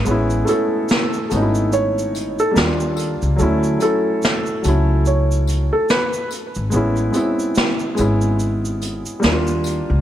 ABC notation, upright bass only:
X:1
M:4/4
L:1/16
Q:"Swing 16ths" 1/4=72
K:A
V:1 name="Upright bass" clef=bass
A,,,2 z4 G,,,4- G,,, z ^D,,3 C,, | D,,2 z4 C,,4- C,, z4 G,,, | A,,,2 z4 G,,,4- G,,, z ^D,,3 C,, |]